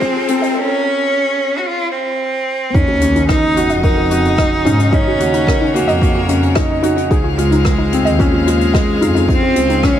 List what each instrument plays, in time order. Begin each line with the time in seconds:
Already playing: string quartet C#3 G#3 C4 F4, felt piano C4 F4 G#4, cello C4, riser
0.01 synth arpeggio sound D#4, kick, closed hi-hat
0.28 felt piano C4, closed hi-hat
0.42 synth arpeggio sound D#5, closed hi-hat
0.57 cello C#4
1.58 cello F#4
1.66 cello F4
1.91 cello C4
2.74 double bass section D#2, string quartet C#3 F#4 A#4 D#5, cello C#4, synth arpeggio sound D#4, kick, closed hi-hat, sub drop
2.88 synth arpeggio sound F#4
3.01 felt piano C#4, closed hi-hat
3.16 synth arpeggio sound D#4, closed hi-hat
3.29 felt piano D#4, cello D#4, kick, cross-stick, closed hi-hat
3.43 synth arpeggio sound D#4
3.56 felt piano F#4, closed hi-hat
3.69 double bass section F2, synth arpeggio sound D#5, closed hi-hat
3.83 cello D#4, synth arpeggio sound F#4, felt piano A#4, kick, closed hi-hat
3.98 synth arpeggio sound F#4
4.10 felt piano F#4, closed hi-hat
4.25 closed hi-hat
4.38 synth arpeggio sound D#5, kick, cross-stick, closed hi-hat
4.65 double bass section G#2, felt piano C#4, synth arpeggio sound D#4, closed hi-hat
4.79 synth arpeggio sound D#4, closed hi-hat
4.92 cello C#4, felt piano D#4, synth arpeggio sound D#4, string quartet C#5, kick, closed hi-hat
5.07 synth arpeggio sound F#4
5.20 double bass section D#2, felt piano F#4, closed hi-hat
5.34 synth arpeggio sound D#4, closed hi-hat
5.47 felt piano A#4, kick, cross-stick, closed hi-hat
5.61 synth arpeggio sound D#4
5.74 cello A#3, felt piano F#4, closed hi-hat
5.88 double bass section F2, synth arpeggio sound D#5, closed hi-hat
6.02 synth arpeggio sound F#4, kick, closed hi-hat
6.15 synth arpeggio sound F#4
6.29 felt piano C#4, closed hi-hat
6.43 closed hi-hat
6.55 felt piano D#4, synth arpeggio sound D#5, kick, cross-stick, closed hi-hat
6.83 synth arpeggio sound D#4, felt piano F#4, closed hi-hat
6.96 synth arpeggio sound D#4, closed hi-hat
7.11 double bass section C#2, synth arpeggio sound D#4, felt piano G#4, string quartet G#4 C5 F5, kick, closed hi-hat
7.24 synth arpeggio sound F4
7.38 cello G#3, felt piano F4, closed hi-hat
7.51 synth arpeggio sound D#4, closed hi-hat
7.65 kick, cross-stick, closed hi-hat
7.78 synth arpeggio sound D#4
7.93 felt piano C4, closed hi-hat
8.05 double bass section D#2, synth arpeggio sound D#5, closed hi-hat
8.19 cello G#3, felt piano C#4, synth arpeggio sound F4, kick, closed hi-hat
8.33 synth arpeggio sound F4
8.47 felt piano F4, closed hi-hat
8.61 closed hi-hat
8.74 felt piano G#4, synth arpeggio sound D#5, kick, cross-stick, closed hi-hat
9.01 double bass section F2, synth arpeggio sound D#4, felt piano F4, closed hi-hat
9.15 synth arpeggio sound D#4, closed hi-hat
9.28 cello C4, synth arpeggio sound D#4, string quartet C5, kick, closed hi-hat
9.43 synth arpeggio sound F4
9.56 double bass section C#2, felt piano C4, closed hi-hat
9.70 synth arpeggio sound D#4, closed hi-hat
9.83 felt piano C#4, cello C#4, kick, cross-stick, closed hi-hat